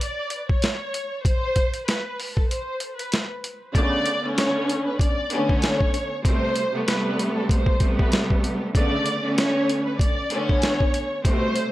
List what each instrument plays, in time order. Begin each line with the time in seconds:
0.00 violin section D5, closed hi-hat
0.30 closed hi-hat
0.49 violin section C#5, kick
0.62 snare, closed hi-hat
0.94 closed hi-hat
1.25 violin section C5, kick, closed hi-hat
1.56 kick, closed hi-hat
1.74 closed hi-hat
1.86 violin section B4, snare, closed hi-hat
2.20 open hi-hat
2.35 violin section A4, kick
2.48 violin section C5, closed hi-hat
2.80 closed hi-hat
2.96 violin section B4, closed hi-hat
3.12 snare, closed hi-hat
3.44 closed hi-hat
3.73 string section C#3 D3 A3 B3, violin section D5, kick, closed hi-hat
4.06 closed hi-hat
4.22 string section D3 A3 B3 C#4
4.37 violin section C#5, snare, closed hi-hat
4.69 closed hi-hat
4.86 violin section B4
4.98 violin section D5, kick, closed hi-hat
5.30 string section D3 A3 B3 C#4, closed hi-hat
5.48 violin section C#5, kick
5.62 snare, closed hi-hat
5.81 kick
5.94 closed hi-hat
6.24 string section B2 C3 G3 A3, violin section C5, kick, closed hi-hat
6.56 closed hi-hat
6.72 string section C3 G3 A3 B3
6.86 string section C3 G3 A3 B3, violin section B4, snare, closed hi-hat
7.19 closed hi-hat
7.36 violin section A4
7.49 violin section C5, kick, closed hi-hat
7.66 kick
7.80 string section C3 G3 A3 B3, kick, closed hi-hat
7.98 violin section B4, kick
8.12 snare, closed hi-hat
8.30 kick
8.44 closed hi-hat
8.74 string section C#3 D3 A3 B3, violin section D5, kick, closed hi-hat
9.06 closed hi-hat
9.22 string section D3 A3 B3 C#4
9.38 violin section C#5, snare, closed hi-hat
9.69 closed hi-hat
9.86 violin section B4
9.99 violin section D5, kick, closed hi-hat
10.30 string section D3 A3 B3 C#4, closed hi-hat
10.49 violin section C#5, kick
10.62 snare, closed hi-hat
10.80 kick
10.94 closed hi-hat
11.24 string section B2 C3 G3 A3, violin section C5, kick, closed hi-hat
11.56 closed hi-hat